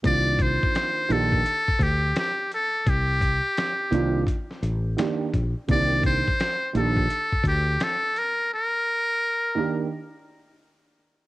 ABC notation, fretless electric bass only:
X:1
M:4/4
L:1/16
Q:"Swing 16ths" 1/4=85
K:Cdor
V:1 name="Fretless electric bass" clef=bass
C,,3 z3 B,,,2 z2 D,,2 z4 | C,,3 z3 C,,2 z2 A,,,2 z2 B,,, z | C,,3 z3 B,,,2 z2 D,,2 z4 | z16 |]